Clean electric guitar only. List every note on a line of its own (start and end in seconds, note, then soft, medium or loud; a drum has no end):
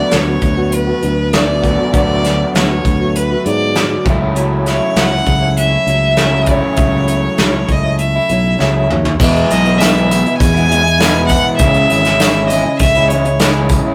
0.00 1.60 D3 medium
0.00 1.64 F#3 medium
0.00 1.64 A3 medium
0.00 1.62 B3 medium
0.00 1.62 F#4 medium
1.62 1.90 D3 medium
1.62 1.92 F#3 medium
1.62 1.93 A3 medium
1.62 1.92 B3 medium
1.62 1.94 F#4 medium
1.91 4.03 D3 medium
1.91 4.05 F#3 medium
1.91 4.07 A3 medium
1.91 4.04 B3 medium
1.91 4.08 F#4 medium
4.05 6.15 C#3 medium
4.05 6.16 F#3 loud
4.05 6.16 A3 loud
4.05 6.16 C#4 medium
4.05 6.19 E4 loud
6.17 6.45 C#3 medium
6.17 6.46 F#3 medium
6.17 6.46 A3 medium
6.17 6.47 C#4 medium
6.17 6.50 E4 medium
6.46 8.57 C#3 medium
6.46 8.57 F#3 medium
6.46 8.58 A3 medium
6.46 8.58 C#4 medium
6.50 8.59 E4 medium
8.59 8.87 C#3 medium
8.59 8.87 F#3 medium
8.59 8.88 A3 medium
8.59 8.88 C#4 medium
8.59 8.88 E4 medium
9.19 9.76 E2 medium
9.19 9.77 B2 loud
9.19 9.66 E3 medium
9.19 9.66 G#3 medium
9.19 9.64 B3 loud
9.19 9.63 E4 medium
9.64 9.78 E3 medium
9.64 9.79 G#3 medium
9.64 9.78 B3 medium
9.64 9.80 E4 medium
9.77 10.38 E2 medium
9.77 10.39 B2 loud
9.77 10.07 E3 medium
9.77 10.08 G#3 loud
9.77 10.09 B3 loud
9.77 10.10 E4 loud
10.08 10.24 E3 medium
10.08 10.25 G#3 medium
10.08 10.23 B3 medium
10.08 10.23 E4 medium
10.25 muted clean electric guitar stroke soft
10.54 10.67 E3 medium
10.54 10.69 G#3 medium
10.54 10.69 B3 medium
10.54 10.70 E4 medium
10.68 10.84 E3 medium
10.68 10.84 G#3 medium
10.68 10.83 B3 medium
10.68 10.83 E4 medium
10.84 muted clean electric guitar stroke medium
10.99 11.58 E2 medium
10.99 11.58 B2 medium
10.99 11.47 E3 loud
10.99 11.46 G#3 loud
10.99 11.44 B3 loud
10.99 11.43 E4 loud
11.44 11.59 E3 medium
11.44 11.62 G#3 medium
11.44 11.58 B3 medium
11.44 11.58 E4 medium
11.61 12.19 C#3 medium
11.61 12.20 E3 medium
11.61 12.07 G#3 loud
11.61 12.05 C#4 medium
11.61 12.03 E4 medium
12.04 12.22 G#3 medium
12.04 12.22 C#4 medium
12.04 12.22 E4 medium
12.20 12.80 C#3 medium
12.20 12.49 E3 medium
12.20 12.52 G#3 loud
12.20 12.51 C#4 loud
12.20 12.52 E4 loud
12.51 12.67 E3 medium
12.51 12.67 G#3 medium
12.51 12.66 C#4 medium
12.51 12.66 E4 medium
12.67 muted clean electric guitar stroke medium
12.97 13.13 G#3 medium
12.97 13.13 C#4 medium
12.97 13.14 E4 medium
13.12 13.27 E3 medium
13.12 13.27 G#3 medium
13.12 13.26 C#4 medium
13.12 13.26 E4 medium
13.27 muted clean electric guitar stroke medium
13.41 13.95 C#3 medium
13.41 13.95 E3 medium
13.41 13.88 G#3 loud
13.41 13.86 C#4 loud
13.41 13.85 E4 medium
13.86 13.95 G#3 medium
13.86 13.95 C#4 medium
13.86 13.95 E4 medium